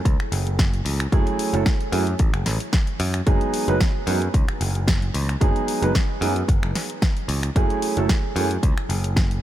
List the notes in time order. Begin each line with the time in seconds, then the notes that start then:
0.05 C#2, kick, closed hi-hat
0.20 finger snap
0.32 F#1, open hi-hat
0.47 closed hi-hat
0.59 kick, snare, closed hi-hat
0.74 closed hi-hat
0.85 C#2, open hi-hat
1.00 finger snap, closed hi-hat
1.12 F#1 F#3 A3 C#4 E4 G#4, kick, closed hi-hat
1.27 closed hi-hat
1.39 open hi-hat
1.53 F#1 F#3 A3 C#4 E4 A4, closed hi-hat
1.66 kick, snare, closed hi-hat
1.81 closed hi-hat
1.92 F#2 F#3 A3 C#4 E4 G#4, open hi-hat
2.07 closed hi-hat
2.19 A1, kick, closed hi-hat
2.33 F#1, finger snap, closed hi-hat
2.46 A1, snare, open hi-hat
2.60 closed hi-hat
2.73 kick, snare, closed hi-hat
2.87 closed hi-hat
3.00 F#2, open hi-hat
3.14 finger snap, closed hi-hat
3.26 F#1 F#3 G#3 B3 D#4 G#4, kick, closed hi-hat
3.41 closed hi-hat
3.54 open hi-hat
3.68 F#1 F#3 G#3 B3 D#4 B4, closed hi-hat
3.80 kick, snare, closed hi-hat
4.07 F#2 F#3 G#3 B3 D#4 G#4, open hi-hat
4.22 closed hi-hat
4.34 C#2, kick, closed hi-hat
4.49 finger snap
4.61 F#1, open hi-hat
4.75 closed hi-hat
4.88 kick, snare, closed hi-hat
5.02 closed hi-hat
5.14 C#2, open hi-hat
5.29 finger snap, closed hi-hat
5.41 F#1 F#3 G#3 B3 D#4 G#4, kick, closed hi-hat
5.56 closed hi-hat
5.68 open hi-hat
5.82 F#1 F#3 G#3 B3 D#4 B4, closed hi-hat
5.95 kick, snare, closed hi-hat
6.21 F#2 F#3 G#3 B3 D#4 G#4, open hi-hat
6.36 closed hi-hat
6.48 F#1, kick, closed hi-hat
6.63 F#1, finger snap
6.75 snare, open hi-hat
6.90 closed hi-hat
7.02 kick, snare, closed hi-hat
7.17 closed hi-hat
7.28 C#2, open hi-hat
7.43 finger snap, closed hi-hat
7.56 F#1 F#3 A3 C#4 E4 G#4, kick, closed hi-hat
7.70 closed hi-hat
7.82 open hi-hat
7.97 F#1 F#3 A3 C#4 E4 A4, closed hi-hat
8.09 kick, snare, closed hi-hat
8.36 F#2 F#3 A3 C#4 E4 G#4, open hi-hat
8.51 closed hi-hat
8.63 C#2, kick, closed hi-hat
8.78 finger snap
8.89 F#1, open hi-hat
9.04 closed hi-hat
9.16 kick, snare, closed hi-hat
9.31 closed hi-hat